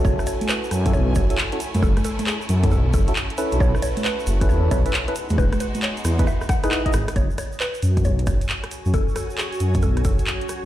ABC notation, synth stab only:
X:1
M:4/4
L:1/16
Q:"Swing 16ths" 1/4=135
K:F#dor
V:1 name="Synth stab"
[CEFA]6- [CEFA] [CEFA]3 [CEFA] [CEFA] z [CEFA] z2 | z6 z [CEFA] z3 [CEFA] z2 [CEAB]2- | [CEAB]6- [CEAB] [CEAB]3 [CEAB] [CEAB] z [CEAB] z2 | z6 z [DEGB] z3 [DEGB]2 [DEGd] z2 |
z16 | z16 |]